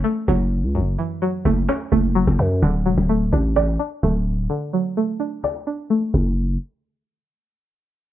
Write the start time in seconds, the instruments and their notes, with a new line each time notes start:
Already playing: synth pluck E3 F#3 C#4
0.04 synth pluck A3
0.28 808-style bass F#1, synth pluck F#3, cajon bass
0.52 cajon slap
0.57 cajon slap
0.63 808-style bass C#2, cajon slap
0.69 cajon slap
0.75 synth pluck F#2, cajon slap
0.81 808-style bass F#1
0.98 synth pluck E3, cajon slap
1.22 synth pluck F#3, cajon slap
1.45 808-style bass F#1, synth pluck A3, cajon bass
1.51 cajon slap
1.57 cajon slap
1.63 cajon slap
1.69 synth pluck C#4, cajon slap
1.92 808-style bass F#1, synth pluck A3, cajon bass
2.00 cajon slap
2.08 cajon slap
2.15 synth pluck F#3, cajon slap
2.27 808-style bass F#1, cajon bass
2.39 808-style bass F#2, cajon bass
2.62 808-style bass D1, synth pluck D3, cajon bass
2.86 808-style bass E1, synth pluck F#3
2.98 808-style bass D1, cajon bass
3.09 synth pluck A3, cajon slap
3.32 808-style bass A1, synth pluck D4, cajon bass
3.56 synth pluck D5, cajon slap
3.79 synth pluck D4, cajon slap
4.03 808-style bass D1, synth pluck A3, cajon bass
4.26 cajon slap
4.32 cajon slap
4.38 cajon slap
4.44 cajon slap
4.50 synth pluck D3
4.73 synth pluck F#3, cajon slap
4.97 synth pluck A3, cajon slap
5.20 synth pluck D4, cajon slap
5.44 synth pluck D5, cajon slap
5.67 synth pluck D4, cajon slap
5.90 synth pluck A3, cajon slap
6.14 808-style bass F#1, cajon bass